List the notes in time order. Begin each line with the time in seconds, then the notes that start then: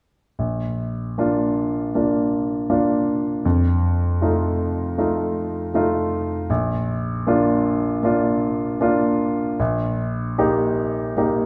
0.39 A#1
1.18 A#3 D4 F4
1.95 A#3 D4 F4
2.70 A#3 D4 F4
3.45 F2
4.21 A3 D#4 F4
4.98 A3 D#4 F4
5.74 A3 D#4 F4
6.50 A#1
7.27 A#3 D4 F4
8.03 A#3 D4 F4
8.80 A#3 D4 F4
9.60 A#1
10.38 A#3 D#4 G4
11.17 A#3 D#4 G4